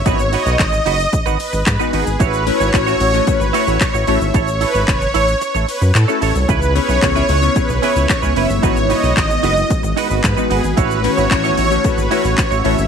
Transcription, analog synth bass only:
X:1
M:4/4
L:1/16
Q:1/4=112
K:Alyd
V:1 name="Analog synth bass" clef=bass
G,,,3 B,,, G,,,2 F,,,2 z G,,, z G,,, G,, z G,,, G,,, | A,,,3 G,,, A,,,2 A,,,2 z G,,, z A,,, z A,,, A,,, G,,, | A,,,3 G,,, F,,,2 A,,,2 z A,,, z F,, A,, z A,,, ^B,,, | C,,3 B,,, C,,2 C,,2 z B,,, z C,, z C,, F,,, =G,,, |
G,,,3 B,,, G,,,2 F,,,2 z G,,, z G,,, G,, z G,,, G,,, | A,,,3 G,,, A,,,2 A,,,2 z G,,, z A,,, z A,,, A,,, G,,, |]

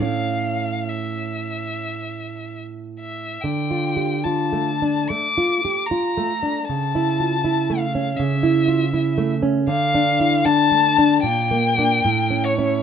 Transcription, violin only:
X:1
M:4/4
L:1/8
Q:1/4=75
K:Dm
V:1 name="Violin"
f2 e4 z e | g2 a2 d'2 b2 | a3 f e3 z | f2 a2 g3 ^c |]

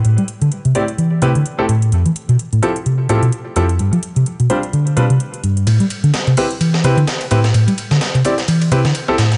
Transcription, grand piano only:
X:1
M:4/4
L:1/16
Q:"Swing 16ths" 1/4=128
K:Am
V:1 name="Grand piano"
z6 [A,,CEGd] z3 [A,,CEGB] z2 [A,,CEGA] z2 | z6 [F,CEGA] z3 [F,CEGA] z3 [F,CEGA] z | z6 [G,CDFc] z3 [G,CDFB] z4 z | z6 [CEGB] z3 [CEGB] z3 [CEGB] z |
z6 [CEGd] z3 [CEGB] z2 [CEGA] z2 |]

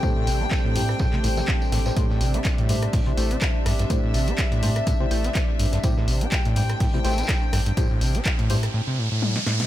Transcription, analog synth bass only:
X:1
M:4/4
L:1/8
Q:"Swing 16ths" 1/4=124
K:Am
V:1 name="Analog synth bass" clef=bass
z A,,, z A,, z A,,, z A,,, | z A,,, z A,, z A,,, z A,,, | z A,,, z A,, z A,,, z A,,, | z A,,, z A,, z A,,, z A,,, |
z A,,, z A,, z4 |]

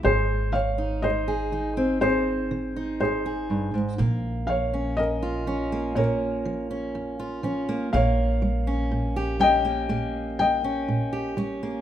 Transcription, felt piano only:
X:1
M:4/4
L:1/16
Q:1/4=61
K:Ab
V:1 name="Felt piano"
[Ac]2 [df]2 [ce]4 [Ac]4 [Ac]3 z | z2 [df]2 [Be]4 [Bd]6 z2 | [df]6 [eg]4 [eg]4 z2 |]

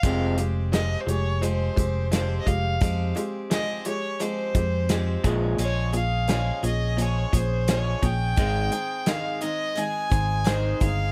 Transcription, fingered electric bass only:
X:1
M:4/4
L:1/8
Q:1/4=86
K:Fm
V:1 name="Fingered electric bass" clef=bass
F,,,3 F,,,2 F,,,2 F,,, | F,, z4 F,,2 B,,, | B,,,3 B,,,2 B,,,2 B,,, | A,,, z4 A,,,2 G,,, |]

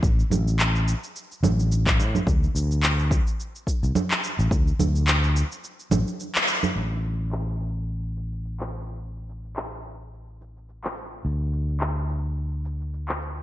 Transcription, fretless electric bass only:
X:1
M:4/4
L:1/16
Q:"Swing 16ths" 1/4=107
K:Dmix
V:1 name="Fretless electric bass" clef=bass
A,,, z A,,,4 z4 A,,,4 A,, z | D,, z D,,4 z4 z C,, z3 A,,, | D,, z D,,4 z4 A,,, z4 z | A,,,16- |
A,,,16 | D,,16 |]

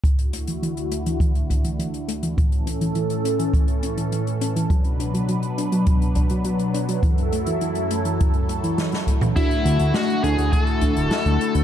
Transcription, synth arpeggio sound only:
X:1
M:4/4
L:1/16
Q:1/4=103
K:Dlyd
V:1 name="Synth arpeggio sound" clef=bass
E, z A, E, E, z A, E, E, z A, E, E, z A, E, | E, z C E, E, z C E, E, z C E, E, z C E, | F, z D F, F, z D F, F, z D F, F, z D F, | E, z A, E, E, z A, E, E, z A, E, E, z A, E, |
z16 |]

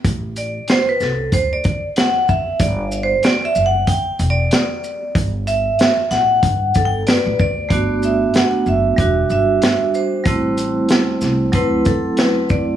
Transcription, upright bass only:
X:1
M:4/4
L:1/16
Q:"Swing 16ths" 1/4=94
K:G
V:1 name="Upright bass" clef=bass
A,,,4 z2 C,,2 D,,2 z6 | G,,,4 z2 F,,,2 z2 E,,,2 z4 | G,,,4 z2 A,,,2 G,,2 G,,,2 z A,,, D,,2 | G,,,4 z2 F,,,2 E,,,2 G,,,2 z4 |
A,,,4 z2 C,,2 D,,2 z6 |]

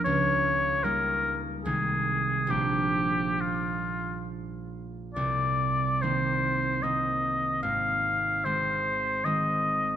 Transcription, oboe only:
X:1
M:3/4
L:1/8
Q:1/4=72
K:Eb
V:1 name="Oboe"
_d2 B z A2 | G2 F2 z2 | d2 c2 e2 | f2 c2 e2 |]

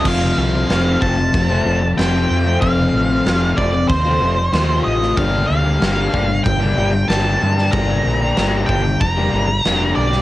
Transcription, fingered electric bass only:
X:1
M:4/4
L:1/8
Q:1/4=94
K:Fmix
V:1 name="Fingered electric bass" clef=bass
F,,, C,, F,,, F,,, F,,, F,,, F,,, F,, | F,,, A,,, F,,, F,,, E,, F,,, E,, A,,, | G,,, D,, G,,, G,,, G,,, G,,, G,,, G,, | G,,, B,,, G,,, G,,, F,,, G,,, F,,, =B,,, |]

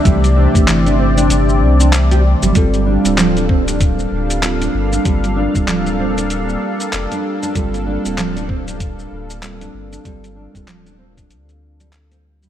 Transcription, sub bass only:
X:1
M:4/4
L:1/16
Q:"Swing 16ths" 1/4=96
K:Gm
V:1 name="Sub bass" clef=bass
C,,3 G,,,4- G,,, G,,,2 C,,4- C,, G,,, | G,,,3 D,,,6- D,,, D,,,4 G,,, z | G,,,3 D,,,6- D,,, z2 F,,, z3 | G,,,3 D,,,6- D,,, D,,,4 G,,, z |
G,,,3 D,,,4- D,,, D,,8 |]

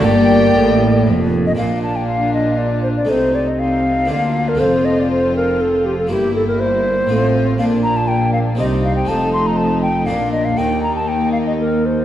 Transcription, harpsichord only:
X:1
M:3/4
L:1/8
Q:1/4=120
K:Gm
V:1 name="Harpsichord"
[B,DG]6 | [K:Bb] [B,DF]6 | [A,E]4 [B,DF]2 | [A,CF]6 |
[B,=E]4 [CF]2 | [DF]4 [CEG]2 | [CEF]4 [B,DF]2 | [B,E]6 |]
V:2 name="Harpsichord" clef=bass
G,,2 A,,2 F,,2 | [K:Bb] B,,6 | C,4 D,2 | F,,6 |
G,,4 A,,2 | B,,4 C,2 | F,,4 B,,2 | E,,6 |]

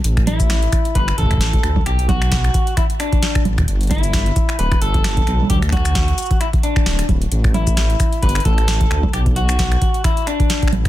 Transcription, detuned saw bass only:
X:1
M:4/4
L:1/8
Q:"Swing 16ths" 1/4=132
K:Bphr
V:1 name="Detuned saw bass" clef=bass
A,,,3 z G,,, A,,,2 D,, | B,,,3 z4 A,,, | G,,,3 z D,,, G,,,2 B,,, | D,,3 z3 D,,, D,,, |
A,,,3 z G,,, A,,,2 D,, | B,,,3 z4 A,,, |]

